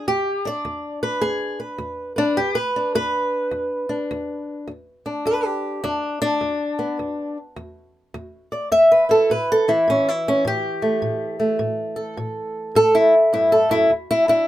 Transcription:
0.07 0.61 E2 medium
0.07 0.46 G4 loud
0.45 2.18 D4 medium
0.45 1.02 D5 medium
0.65 1.18 E2 medium
1.03 1.22 B4 medium
1.21 1.75 E2 medium
1.21 1.58 G#4 medium
1.60 2.16 B4 soft
1.78 2.32 E2 medium
2.16 2.37 D4 medium
2.16 2.55 B4 soft
2.37 2.91 E2 medium
2.37 2.56 G4 medium
2.55 2.94 B4 medium
2.76 3.89 D4 medium
2.95 3.48 E2 medium
2.95 4.68 B4 loud
3.51 4.05 E2 medium
3.89 4.70 D4 medium
4.11 4.64 E2 medium
4.67 5.21 E2 medium
5.06 5.83 D4 medium
5.25 5.79 E2 medium
5.25 5.45 B4 medium
5.45 5.83 G4 loud
5.84 6.37 E2 medium
5.84 6.20 D4 medium
6.22 7.37 D4 loud
6.41 6.94 E2 medium
6.79 6.96 B3 soft
6.99 7.52 E2 medium
7.56 8.10 E2 medium
8.14 8.67 E2 medium
8.52 8.72 D5 soft
8.72 9.25 E2 medium
8.72 8.91 E5 loud
8.91 9.10 B4 medium
9.09 9.68 E4 soft
9.09 9.29 A4 medium
9.30 9.83 A2 medium
9.30 9.49 B4 medium
9.52 9.69 A4 loud
9.68 13.92 E3 soft
9.68 9.87 E4 medium
9.88 10.40 A2 medium
9.88 10.07 C#4 medium
10.08 10.26 E4 medium
10.28 10.46 C#4 medium
10.45 10.98 A2 medium
10.45 11.61 G4 loud
10.82 11.38 A3 soft
11.02 11.55 A2 medium
11.40 13.91 A3 soft
11.59 12.13 A2 medium
11.96 12.75 A4 medium
12.17 12.71 A2 medium
12.75 13.29 A2 medium
12.75 12.95 A4 loud
12.95 13.14 E4 medium
13.33 13.69 G2 medium
13.33 13.52 E4 medium
13.52 13.71 A4 medium
13.69 13.89 F#2 medium
13.69 13.90 E4 loud
13.90 14.44 E2 medium
14.11 14.28 E4 loud
14.28 14.48 D4 medium
14.28 14.48 E4 medium

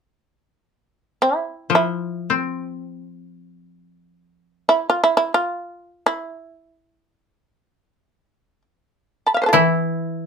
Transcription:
1.22 1.68 E4 medium
1.70 5.08 F3 soft
1.75 2.44 E4 medium
2.30 4.74 C4 soft
2.44 4.68 F4 medium
4.69 4.88 E4 medium
4.90 5.03 F4 medium
5.04 5.16 E4 medium
5.17 5.32 E4 medium
5.34 6.05 F4 medium
6.06 8.62 E4 medium
9.27 9.34 A5 soft
9.27 9.41 B5 soft
9.34 9.41 E5 soft
9.34 9.46 F5 soft
9.42 9.58 B4 soft
9.42 9.48 C5 soft
9.46 9.52 F4 soft
9.46 9.61 A4 soft
9.53 10.26 E3 soft
9.53 10.26 E4 medium
9.53 10.26 E4 soft

